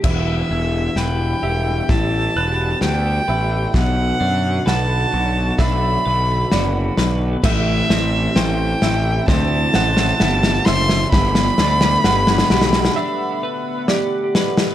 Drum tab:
CC |x-------------------------------|--------------------------------|x-------------------------------|--------------------------------|
SD |o-------o-------o-------o-------|o-------o-------o-------o---o---|o---o---o---o---o---o-o-o-o-o-o-|o-o-o-o-o-oooooo--------o---o-o-|
BD |o---------------o---------------|o---------------o---------------|o---------------o---------------|o-------------------------------|